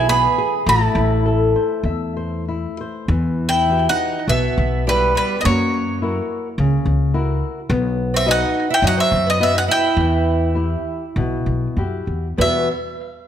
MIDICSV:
0, 0, Header, 1, 5, 480
1, 0, Start_track
1, 0, Key_signature, 0, "minor"
1, 0, Tempo, 587084
1, 543, Time_signature, 4, 2, 24, 8
1, 1509, Tempo, 621762
1, 2468, Key_signature, 1, "minor"
1, 2469, Tempo, 593472
1, 3909, Tempo, 566572
1, 8229, Tempo, 600601
1, 10871, End_track
2, 0, Start_track
2, 0, Title_t, "Mandolin"
2, 0, Program_c, 0, 25
2, 76, Note_on_c, 0, 83, 105
2, 560, Note_off_c, 0, 83, 0
2, 564, Note_on_c, 0, 81, 98
2, 1972, Note_off_c, 0, 81, 0
2, 2791, Note_on_c, 0, 79, 89
2, 3116, Note_off_c, 0, 79, 0
2, 3119, Note_on_c, 0, 78, 89
2, 3444, Note_on_c, 0, 76, 93
2, 3445, Note_off_c, 0, 78, 0
2, 3881, Note_off_c, 0, 76, 0
2, 3926, Note_on_c, 0, 71, 84
2, 4155, Note_off_c, 0, 71, 0
2, 4166, Note_on_c, 0, 71, 85
2, 4352, Note_off_c, 0, 71, 0
2, 4365, Note_on_c, 0, 75, 63
2, 4399, Note_off_c, 0, 75, 0
2, 4403, Note_on_c, 0, 73, 91
2, 5796, Note_off_c, 0, 73, 0
2, 6700, Note_on_c, 0, 76, 94
2, 6803, Note_off_c, 0, 76, 0
2, 6823, Note_on_c, 0, 78, 113
2, 7140, Note_off_c, 0, 78, 0
2, 7188, Note_on_c, 0, 79, 96
2, 7289, Note_off_c, 0, 79, 0
2, 7299, Note_on_c, 0, 78, 109
2, 7405, Note_off_c, 0, 78, 0
2, 7411, Note_on_c, 0, 76, 88
2, 7645, Note_off_c, 0, 76, 0
2, 7661, Note_on_c, 0, 75, 85
2, 7766, Note_off_c, 0, 75, 0
2, 7774, Note_on_c, 0, 76, 87
2, 7883, Note_off_c, 0, 76, 0
2, 7899, Note_on_c, 0, 78, 91
2, 7942, Note_off_c, 0, 78, 0
2, 8014, Note_on_c, 0, 79, 94
2, 9894, Note_off_c, 0, 79, 0
2, 10182, Note_on_c, 0, 76, 82
2, 10396, Note_off_c, 0, 76, 0
2, 10871, End_track
3, 0, Start_track
3, 0, Title_t, "Nylon-string guitar"
3, 0, Program_c, 1, 24
3, 0, Note_on_c, 1, 52, 70
3, 70, Note_on_c, 1, 59, 62
3, 298, Note_off_c, 1, 59, 0
3, 312, Note_on_c, 1, 68, 65
3, 508, Note_off_c, 1, 52, 0
3, 540, Note_off_c, 1, 68, 0
3, 542, Note_on_c, 1, 57, 74
3, 787, Note_on_c, 1, 64, 55
3, 1015, Note_off_c, 1, 64, 0
3, 1028, Note_on_c, 1, 69, 53
3, 1257, Note_off_c, 1, 69, 0
3, 1273, Note_on_c, 1, 72, 51
3, 1508, Note_off_c, 1, 72, 0
3, 1514, Note_on_c, 1, 76, 58
3, 1744, Note_off_c, 1, 76, 0
3, 1757, Note_on_c, 1, 72, 53
3, 1990, Note_off_c, 1, 72, 0
3, 2002, Note_on_c, 1, 64, 45
3, 2233, Note_off_c, 1, 64, 0
3, 2251, Note_on_c, 1, 72, 50
3, 2437, Note_off_c, 1, 57, 0
3, 2469, Note_off_c, 1, 72, 0
3, 2472, Note_on_c, 1, 52, 58
3, 2939, Note_off_c, 1, 52, 0
3, 2955, Note_on_c, 1, 52, 49
3, 2958, Note_on_c, 1, 66, 40
3, 2959, Note_on_c, 1, 67, 46
3, 3339, Note_off_c, 1, 52, 0
3, 3340, Note_off_c, 1, 66, 0
3, 3342, Note_off_c, 1, 67, 0
3, 3434, Note_on_c, 1, 47, 63
3, 3894, Note_off_c, 1, 47, 0
3, 3908, Note_on_c, 1, 66, 45
3, 3914, Note_on_c, 1, 64, 49
3, 3915, Note_on_c, 1, 67, 55
3, 4301, Note_off_c, 1, 66, 0
3, 4302, Note_off_c, 1, 64, 0
3, 4304, Note_off_c, 1, 67, 0
3, 4411, Note_on_c, 1, 54, 70
3, 4869, Note_off_c, 1, 54, 0
3, 4883, Note_on_c, 1, 64, 51
3, 4890, Note_on_c, 1, 66, 47
3, 4894, Note_on_c, 1, 70, 52
3, 5261, Note_off_c, 1, 64, 0
3, 5266, Note_off_c, 1, 66, 0
3, 5267, Note_off_c, 1, 70, 0
3, 5369, Note_on_c, 1, 49, 75
3, 5821, Note_off_c, 1, 49, 0
3, 5834, Note_on_c, 1, 64, 54
3, 5834, Note_on_c, 1, 66, 51
3, 5838, Note_on_c, 1, 70, 55
3, 6211, Note_off_c, 1, 64, 0
3, 6211, Note_off_c, 1, 66, 0
3, 6214, Note_off_c, 1, 70, 0
3, 6301, Note_on_c, 1, 59, 71
3, 6766, Note_off_c, 1, 59, 0
3, 6780, Note_on_c, 1, 71, 49
3, 6783, Note_on_c, 1, 66, 52
3, 6786, Note_on_c, 1, 75, 59
3, 7166, Note_off_c, 1, 71, 0
3, 7169, Note_off_c, 1, 66, 0
3, 7169, Note_off_c, 1, 75, 0
3, 7260, Note_on_c, 1, 54, 76
3, 7729, Note_off_c, 1, 54, 0
3, 7748, Note_on_c, 1, 66, 51
3, 7748, Note_on_c, 1, 71, 47
3, 7751, Note_on_c, 1, 75, 59
3, 8134, Note_off_c, 1, 71, 0
3, 8135, Note_off_c, 1, 66, 0
3, 8135, Note_off_c, 1, 75, 0
3, 8238, Note_on_c, 1, 52, 64
3, 8692, Note_off_c, 1, 52, 0
3, 8694, Note_on_c, 1, 64, 47
3, 8704, Note_on_c, 1, 67, 51
3, 9083, Note_off_c, 1, 64, 0
3, 9089, Note_off_c, 1, 67, 0
3, 9192, Note_on_c, 1, 47, 68
3, 9659, Note_off_c, 1, 47, 0
3, 9672, Note_on_c, 1, 66, 40
3, 9673, Note_on_c, 1, 64, 43
3, 9678, Note_on_c, 1, 67, 49
3, 10061, Note_off_c, 1, 64, 0
3, 10062, Note_off_c, 1, 66, 0
3, 10065, Note_off_c, 1, 67, 0
3, 10152, Note_on_c, 1, 40, 54
3, 10156, Note_on_c, 1, 47, 48
3, 10160, Note_on_c, 1, 52, 48
3, 10165, Note_on_c, 1, 55, 52
3, 10169, Note_on_c, 1, 66, 51
3, 10169, Note_on_c, 1, 71, 58
3, 10379, Note_off_c, 1, 40, 0
3, 10382, Note_off_c, 1, 47, 0
3, 10384, Note_off_c, 1, 52, 0
3, 10386, Note_off_c, 1, 55, 0
3, 10388, Note_off_c, 1, 66, 0
3, 10389, Note_off_c, 1, 71, 0
3, 10871, End_track
4, 0, Start_track
4, 0, Title_t, "Twelve-string acoustic guitar"
4, 0, Program_c, 2, 25
4, 77, Note_on_c, 2, 68, 96
4, 515, Note_off_c, 2, 68, 0
4, 560, Note_on_c, 2, 64, 82
4, 1971, Note_off_c, 2, 64, 0
4, 2793, Note_on_c, 2, 64, 77
4, 3093, Note_off_c, 2, 64, 0
4, 3121, Note_on_c, 2, 63, 80
4, 3415, Note_off_c, 2, 63, 0
4, 3442, Note_on_c, 2, 59, 83
4, 3880, Note_off_c, 2, 59, 0
4, 3909, Note_on_c, 2, 55, 76
4, 4138, Note_off_c, 2, 55, 0
4, 4147, Note_on_c, 2, 55, 69
4, 4324, Note_off_c, 2, 55, 0
4, 4347, Note_on_c, 2, 59, 50
4, 4394, Note_on_c, 2, 58, 70
4, 4397, Note_off_c, 2, 59, 0
4, 5792, Note_off_c, 2, 58, 0
4, 6680, Note_on_c, 2, 60, 72
4, 6783, Note_off_c, 2, 60, 0
4, 6802, Note_on_c, 2, 63, 97
4, 7129, Note_off_c, 2, 63, 0
4, 7158, Note_on_c, 2, 64, 88
4, 7263, Note_off_c, 2, 64, 0
4, 7272, Note_on_c, 2, 63, 92
4, 7380, Note_off_c, 2, 63, 0
4, 7387, Note_on_c, 2, 60, 69
4, 7610, Note_off_c, 2, 60, 0
4, 7634, Note_on_c, 2, 59, 66
4, 7741, Note_off_c, 2, 59, 0
4, 7756, Note_on_c, 2, 59, 77
4, 7863, Note_off_c, 2, 59, 0
4, 7872, Note_on_c, 2, 63, 71
4, 7914, Note_off_c, 2, 63, 0
4, 7987, Note_on_c, 2, 64, 76
4, 9882, Note_off_c, 2, 64, 0
4, 10158, Note_on_c, 2, 59, 67
4, 10383, Note_off_c, 2, 59, 0
4, 10871, End_track
5, 0, Start_track
5, 0, Title_t, "Upright bass"
5, 0, Program_c, 3, 32
5, 0, Note_on_c, 3, 35, 103
5, 210, Note_off_c, 3, 35, 0
5, 543, Note_on_c, 3, 33, 105
5, 699, Note_off_c, 3, 33, 0
5, 777, Note_on_c, 3, 33, 102
5, 1250, Note_off_c, 3, 33, 0
5, 1500, Note_on_c, 3, 40, 82
5, 2127, Note_off_c, 3, 40, 0
5, 2464, Note_on_c, 3, 40, 104
5, 3093, Note_off_c, 3, 40, 0
5, 3429, Note_on_c, 3, 35, 83
5, 3585, Note_off_c, 3, 35, 0
5, 3671, Note_on_c, 3, 35, 90
5, 4140, Note_off_c, 3, 35, 0
5, 4402, Note_on_c, 3, 42, 110
5, 5021, Note_off_c, 3, 42, 0
5, 5358, Note_on_c, 3, 37, 91
5, 5510, Note_off_c, 3, 37, 0
5, 5591, Note_on_c, 3, 37, 86
5, 6053, Note_off_c, 3, 37, 0
5, 6304, Note_on_c, 3, 35, 118
5, 6928, Note_off_c, 3, 35, 0
5, 7258, Note_on_c, 3, 42, 99
5, 7417, Note_off_c, 3, 42, 0
5, 7507, Note_on_c, 3, 42, 91
5, 7977, Note_off_c, 3, 42, 0
5, 8227, Note_on_c, 3, 40, 103
5, 8848, Note_off_c, 3, 40, 0
5, 9181, Note_on_c, 3, 35, 89
5, 9339, Note_off_c, 3, 35, 0
5, 9423, Note_on_c, 3, 35, 76
5, 9582, Note_off_c, 3, 35, 0
5, 9665, Note_on_c, 3, 42, 72
5, 9887, Note_off_c, 3, 42, 0
5, 9910, Note_on_c, 3, 40, 62
5, 10132, Note_off_c, 3, 40, 0
5, 10159, Note_on_c, 3, 40, 88
5, 10383, Note_off_c, 3, 40, 0
5, 10871, End_track
0, 0, End_of_file